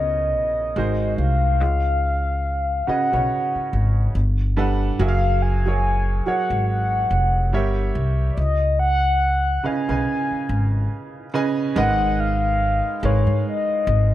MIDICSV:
0, 0, Header, 1, 5, 480
1, 0, Start_track
1, 0, Tempo, 845070
1, 912, Time_signature, 4, 2, 24, 8
1, 8033, End_track
2, 0, Start_track
2, 0, Title_t, "Soft synth lead"
2, 0, Program_c, 0, 80
2, 0, Note_on_c, 0, 75, 85
2, 647, Note_off_c, 0, 75, 0
2, 667, Note_on_c, 0, 77, 105
2, 1629, Note_on_c, 0, 78, 106
2, 1637, Note_off_c, 0, 77, 0
2, 2350, Note_off_c, 0, 78, 0
2, 2840, Note_on_c, 0, 77, 98
2, 3079, Note_on_c, 0, 80, 106
2, 3088, Note_off_c, 0, 77, 0
2, 3555, Note_off_c, 0, 80, 0
2, 3562, Note_on_c, 0, 78, 98
2, 3780, Note_off_c, 0, 78, 0
2, 3801, Note_on_c, 0, 78, 96
2, 4493, Note_off_c, 0, 78, 0
2, 4726, Note_on_c, 0, 74, 61
2, 4759, Note_on_c, 0, 75, 86
2, 4768, Note_off_c, 0, 74, 0
2, 4992, Note_off_c, 0, 75, 0
2, 4995, Note_on_c, 0, 78, 107
2, 5491, Note_on_c, 0, 80, 105
2, 5500, Note_off_c, 0, 78, 0
2, 6441, Note_off_c, 0, 80, 0
2, 6682, Note_on_c, 0, 78, 124
2, 6930, Note_on_c, 0, 77, 127
2, 6938, Note_off_c, 0, 78, 0
2, 7413, Note_on_c, 0, 73, 100
2, 7421, Note_off_c, 0, 77, 0
2, 7642, Note_off_c, 0, 73, 0
2, 7663, Note_on_c, 0, 75, 86
2, 8033, Note_off_c, 0, 75, 0
2, 8033, End_track
3, 0, Start_track
3, 0, Title_t, "Grand piano"
3, 0, Program_c, 1, 0
3, 0, Control_c, 1, 64, 127
3, 0, Note_on_c, 1, 47, 61
3, 0, Note_on_c, 1, 49, 61
3, 0, Note_on_c, 1, 59, 59
3, 0, Note_on_c, 1, 70, 51
3, 0, Note_on_c, 1, 73, 55
3, 0, Note_on_c, 1, 74, 51
3, 0, Note_on_c, 1, 75, 70
3, 431, Note_off_c, 1, 70, 0
3, 431, Note_on_c, 1, 56, 75
3, 434, Note_off_c, 1, 49, 0
3, 434, Note_off_c, 1, 59, 0
3, 434, Note_on_c, 1, 63, 60
3, 437, Note_on_c, 1, 66, 63
3, 438, Note_off_c, 1, 74, 0
3, 438, Control_c, 1, 64, 0
3, 439, Note_off_c, 1, 73, 0
3, 439, Note_on_c, 1, 70, 65
3, 442, Note_off_c, 1, 47, 0
3, 444, Note_on_c, 1, 72, 79
3, 459, Note_off_c, 1, 75, 0
3, 522, Control_c, 1, 64, 127
3, 890, Note_off_c, 1, 56, 0
3, 891, Note_off_c, 1, 63, 0
3, 892, Note_off_c, 1, 66, 0
3, 894, Note_off_c, 1, 70, 0
3, 896, Note_off_c, 1, 72, 0
3, 919, Control_c, 1, 64, 0
3, 1007, Control_c, 1, 64, 127
3, 1631, Note_on_c, 1, 61, 59
3, 1632, Note_on_c, 1, 49, 66
3, 1636, Note_on_c, 1, 66, 57
3, 1637, Note_on_c, 1, 71, 60
3, 1643, Note_on_c, 1, 75, 80
3, 1760, Note_off_c, 1, 49, 0
3, 1763, Note_off_c, 1, 61, 0
3, 1765, Note_off_c, 1, 66, 0
3, 1766, Note_off_c, 1, 71, 0
3, 1769, Note_off_c, 1, 75, 0
3, 1769, Note_on_c, 1, 49, 61
3, 1772, Note_on_c, 1, 61, 53
3, 1776, Note_on_c, 1, 66, 54
3, 1776, Note_on_c, 1, 71, 50
3, 1781, Note_on_c, 1, 73, 62
3, 2351, Note_off_c, 1, 49, 0
3, 2352, Note_off_c, 1, 61, 0
3, 2354, Note_off_c, 1, 66, 0
3, 2354, Note_off_c, 1, 71, 0
3, 2357, Note_off_c, 1, 73, 0
3, 2359, Control_c, 1, 64, 0
3, 2472, Control_c, 1, 64, 127
3, 2593, Note_on_c, 1, 55, 87
3, 2595, Note_on_c, 1, 62, 81
3, 2598, Note_on_c, 1, 69, 76
3, 2602, Note_on_c, 1, 71, 74
3, 2606, Note_on_c, 1, 78, 92
3, 2821, Note_off_c, 1, 55, 0
3, 2823, Note_off_c, 1, 62, 0
3, 2824, Note_off_c, 1, 69, 0
3, 2826, Note_off_c, 1, 71, 0
3, 2828, Note_off_c, 1, 78, 0
3, 2836, Note_on_c, 1, 54, 92
3, 2840, Control_c, 1, 64, 0
3, 2842, Note_on_c, 1, 66, 67
3, 2842, Note_on_c, 1, 68, 80
3, 2845, Note_on_c, 1, 70, 75
3, 2850, Note_on_c, 1, 76, 67
3, 2883, Note_off_c, 1, 76, 0
3, 2887, Note_on_c, 1, 77, 93
3, 2933, Control_c, 1, 64, 127
3, 3190, Note_off_c, 1, 54, 0
3, 3193, Note_off_c, 1, 66, 0
3, 3194, Note_off_c, 1, 68, 0
3, 3195, Note_off_c, 1, 70, 0
3, 3213, Note_on_c, 1, 54, 72
3, 3216, Note_off_c, 1, 77, 0
3, 3217, Note_on_c, 1, 66, 63
3, 3219, Note_on_c, 1, 68, 65
3, 3221, Note_on_c, 1, 70, 62
3, 3226, Note_on_c, 1, 73, 71
3, 3536, Note_off_c, 1, 54, 0
3, 3538, Note_off_c, 1, 66, 0
3, 3539, Note_off_c, 1, 68, 0
3, 3540, Note_off_c, 1, 70, 0
3, 3543, Note_off_c, 1, 73, 0
3, 3556, Note_on_c, 1, 54, 65
3, 3558, Note_on_c, 1, 66, 56
3, 3560, Note_on_c, 1, 68, 61
3, 3562, Note_on_c, 1, 70, 66
3, 3567, Note_on_c, 1, 73, 77
3, 4273, Note_off_c, 1, 70, 0
3, 4274, Note_off_c, 1, 54, 0
3, 4275, Note_off_c, 1, 66, 0
3, 4275, Note_off_c, 1, 73, 0
3, 4276, Note_off_c, 1, 68, 0
3, 4276, Note_on_c, 1, 55, 77
3, 4278, Control_c, 1, 64, 0
3, 4278, Note_on_c, 1, 67, 71
3, 4282, Note_on_c, 1, 70, 68
3, 4284, Note_on_c, 1, 73, 74
3, 4286, Note_on_c, 1, 76, 82
3, 4380, Control_c, 1, 64, 127
3, 4732, Note_off_c, 1, 55, 0
3, 4733, Note_off_c, 1, 67, 0
3, 4735, Note_off_c, 1, 70, 0
3, 4736, Note_off_c, 1, 73, 0
3, 4737, Note_off_c, 1, 76, 0
3, 4759, Control_c, 1, 64, 0
3, 4843, Control_c, 1, 64, 127
3, 5472, Note_on_c, 1, 49, 67
3, 5476, Note_on_c, 1, 61, 63
3, 5479, Note_on_c, 1, 71, 56
3, 5484, Note_on_c, 1, 75, 66
3, 5484, Note_on_c, 1, 77, 77
3, 5603, Note_off_c, 1, 49, 0
3, 5605, Note_off_c, 1, 61, 0
3, 5607, Note_off_c, 1, 71, 0
3, 5609, Note_off_c, 1, 75, 0
3, 5609, Note_off_c, 1, 77, 0
3, 5614, Note_on_c, 1, 49, 70
3, 5618, Note_on_c, 1, 61, 55
3, 5618, Note_on_c, 1, 71, 61
3, 5622, Note_on_c, 1, 75, 57
3, 5624, Note_on_c, 1, 80, 71
3, 6395, Note_off_c, 1, 49, 0
3, 6397, Note_off_c, 1, 61, 0
3, 6397, Note_off_c, 1, 71, 0
3, 6399, Note_off_c, 1, 75, 0
3, 6400, Note_off_c, 1, 80, 0
3, 6439, Note_on_c, 1, 49, 93
3, 6441, Note_on_c, 1, 61, 78
3, 6441, Note_on_c, 1, 71, 84
3, 6444, Note_on_c, 1, 75, 79
3, 6449, Note_on_c, 1, 80, 98
3, 6664, Note_off_c, 1, 49, 0
3, 6665, Note_off_c, 1, 61, 0
3, 6665, Note_off_c, 1, 71, 0
3, 6667, Note_off_c, 1, 75, 0
3, 6669, Note_off_c, 1, 80, 0
3, 6677, Note_on_c, 1, 56, 93
3, 6678, Note_on_c, 1, 63, 78
3, 6679, Control_c, 1, 64, 0
3, 6684, Note_on_c, 1, 70, 84
3, 6684, Note_on_c, 1, 71, 81
3, 6687, Note_on_c, 1, 75, 107
3, 6780, Control_c, 1, 64, 127
3, 7362, Note_off_c, 1, 56, 0
3, 7362, Note_off_c, 1, 63, 0
3, 7365, Note_off_c, 1, 70, 0
3, 7365, Note_off_c, 1, 71, 0
3, 7366, Note_off_c, 1, 75, 0
3, 7399, Note_on_c, 1, 56, 81
3, 7402, Note_on_c, 1, 63, 58
3, 7405, Note_on_c, 1, 70, 62
3, 7409, Note_on_c, 1, 71, 65
3, 7411, Note_on_c, 1, 77, 73
3, 8033, Note_off_c, 1, 56, 0
3, 8033, Note_off_c, 1, 63, 0
3, 8033, Note_off_c, 1, 70, 0
3, 8033, Note_off_c, 1, 71, 0
3, 8033, Note_off_c, 1, 77, 0
3, 8033, End_track
4, 0, Start_track
4, 0, Title_t, "Upright bass"
4, 0, Program_c, 2, 32
4, 0, Note_on_c, 2, 37, 68
4, 192, Note_off_c, 2, 37, 0
4, 192, Note_on_c, 2, 34, 82
4, 432, Note_on_c, 2, 32, 83
4, 440, Note_off_c, 2, 34, 0
4, 644, Note_off_c, 2, 32, 0
4, 671, Note_on_c, 2, 36, 76
4, 911, Note_off_c, 2, 36, 0
4, 911, Note_on_c, 2, 37, 91
4, 1609, Note_off_c, 2, 37, 0
4, 1778, Note_on_c, 2, 35, 74
4, 1864, Note_off_c, 2, 35, 0
4, 2118, Note_on_c, 2, 32, 83
4, 2327, Note_off_c, 2, 32, 0
4, 2357, Note_on_c, 2, 31, 89
4, 2778, Note_off_c, 2, 31, 0
4, 2837, Note_on_c, 2, 30, 98
4, 3531, Note_off_c, 2, 30, 0
4, 3693, Note_on_c, 2, 32, 84
4, 3993, Note_off_c, 2, 32, 0
4, 4036, Note_on_c, 2, 29, 85
4, 4277, Note_off_c, 2, 29, 0
4, 4277, Note_on_c, 2, 31, 82
4, 4486, Note_off_c, 2, 31, 0
4, 4516, Note_on_c, 2, 36, 87
4, 4726, Note_off_c, 2, 36, 0
4, 4756, Note_on_c, 2, 37, 86
4, 5451, Note_off_c, 2, 37, 0
4, 5616, Note_on_c, 2, 35, 75
4, 5703, Note_off_c, 2, 35, 0
4, 5960, Note_on_c, 2, 32, 90
4, 6168, Note_off_c, 2, 32, 0
4, 6680, Note_on_c, 2, 32, 96
4, 7272, Note_off_c, 2, 32, 0
4, 7400, Note_on_c, 2, 32, 96
4, 7519, Note_off_c, 2, 32, 0
4, 7536, Note_on_c, 2, 44, 83
4, 7622, Note_off_c, 2, 44, 0
4, 7878, Note_on_c, 2, 32, 102
4, 8033, Note_off_c, 2, 32, 0
4, 8033, End_track
5, 0, Start_track
5, 0, Title_t, "Muted upright bass strokes"
5, 1637, Note_on_c, 9, 29, 44
5, 1693, Note_off_c, 9, 29, 0
5, 2018, Note_on_c, 9, 29, 41
5, 2074, Note_off_c, 9, 29, 0
5, 3557, Note_on_c, 9, 29, 47
5, 3614, Note_off_c, 9, 29, 0
5, 5477, Note_on_c, 9, 29, 44
5, 5533, Note_off_c, 9, 29, 0
5, 5857, Note_on_c, 9, 29, 46
5, 5914, Note_off_c, 9, 29, 0
5, 8033, End_track
0, 0, End_of_file